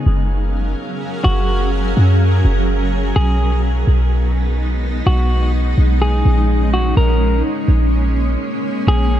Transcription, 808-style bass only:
0.06 0.75 F#1 loud
1.25 1.94 F#1 loud
1.97 2.43 F#2 medium
2.45 3.13 F#1 loud
3.16 3.85 B1 loud
3.87 5.02 B1 medium
5.07 5.75 B1 loud
5.78 6.24 B1 loud
6.25 6.94 A#1 loud
6.97 7.43 A#1 loud
7.68 8.37 A#1 loud
8.87 9.20 A#1 loud

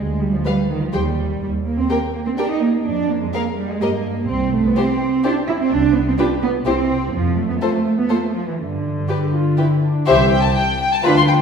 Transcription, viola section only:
0.46 0.54 G4 soft
0.94 1.02 G4 soft
1.90 1.98 G4 soft
2.39 2.47 G4 soft
3.34 3.42 G#4 soft
3.81 3.89 G4 soft
4.76 4.84 E4 soft
5.24 5.32 E4 soft
6.18 6.26 F4 soft
6.66 6.74 E4 soft
7.62 7.70 F4 soft
8.09 8.17 F4 soft
9.09 9.17 G4 medium
9.34 9.58 F4 medium
9.58 9.66 E4 soft
9.83 10.07 D4 soft
10.07 10.30 E3 soft
10.07 10.30 E4 soft
11.04 11.27 F3 soft
11.04 11.27 D4 soft

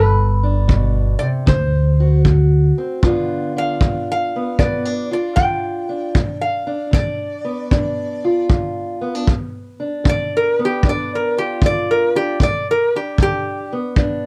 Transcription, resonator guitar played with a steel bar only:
0.00 1.25 B4 loud
1.19 1.26 D5 medium
1.48 2.21 C5 medium
3.58 4.07 F5 medium
4.12 4.59 F5 medium
4.59 5.09 D5 medium
5.13 5.37 D5 medium
5.36 6.37 G5 medium
6.41 6.91 F5 medium
6.94 8.46 D5 medium
10.09 10.33 D5 medium
10.37 10.59 A#4 medium
10.65 10.86 G4 medium
10.89 11.12 D5 medium
11.15 11.38 A#4 medium
11.38 11.62 G4 medium
11.66 11.89 D5 loud
11.91 12.14 A#4 medium
12.16 12.40 G4 medium
12.43 12.67 D5 medium
12.71 12.94 A#4 medium
12.96 13.19 G4 medium
13.22 13.71 G4 medium

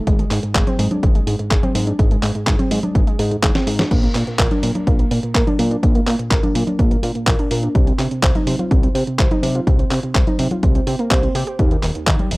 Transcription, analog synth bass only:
0.07 0.25 G#1 loud
0.31 0.40 G#2 medium
0.55 0.64 G#1 loud
0.79 0.88 G#2 medium
1.03 1.21 G#1 medium
1.27 1.36 G#2 medium
1.51 1.60 G#1 medium
1.75 1.93 G#2 medium
1.99 2.17 G#1 loud
2.23 2.32 G#2 medium
2.47 2.56 G#1 loud
2.71 2.80 G#2 medium
2.95 3.04 G#1 loud
3.19 3.37 G#2 medium
3.43 3.52 G#1 loud
3.67 3.85 G#2 medium
3.91 4.09 A#1 loud
4.15 4.24 A#2 medium
4.39 4.48 A#1 loud
4.63 4.72 A#2 medium
4.87 5.05 A#1 medium
5.11 5.20 A#2 medium
5.35 5.44 A#1 medium
5.59 5.77 A#2 medium
5.83 6.01 A#1 loud
6.07 6.16 A#2 medium
6.31 6.40 A#1 loud
6.55 6.64 A#2 medium
6.79 6.97 A#1 medium
7.03 7.12 A#2 medium
7.27 7.36 A#1 medium
7.51 7.69 A#2 medium
7.75 7.93 C2 loud
7.99 8.08 C3 medium
8.23 8.32 C2 loud
8.47 8.56 C3 medium
8.71 8.89 C2 medium
8.95 9.04 C3 medium
9.19 9.28 C2 medium
9.43 9.60 C3 medium
9.67 9.85 C2 loud
9.91 10.00 C3 medium
10.15 10.24 C2 loud
10.39 10.48 C3 medium
10.63 10.81 C2 medium
10.87 10.96 C3 medium
11.11 11.29 C2 loud
11.35 11.44 C3 loud
11.59 11.77 D#2 loud
11.83 11.92 D#1 medium
12.07 12.16 D#2 loud
12.31 12.37 D#1 medium

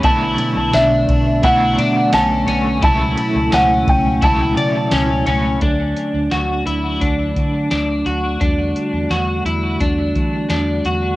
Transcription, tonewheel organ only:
0.00 5.58 B2 medium
0.00 2.80 D3 medium
0.00 2.79 A3 medium
0.00 2.80 B3 medium
2.83 5.59 F#3 medium
2.83 5.59 A3 medium
2.83 5.59 E4 medium
5.62 8.38 D3 medium
5.62 8.38 F#3 medium
5.62 11.16 A3 soft
5.62 8.38 D4 medium
8.41 11.16 D3 medium
8.41 11.16 G3 medium
8.41 11.16 F#4 medium

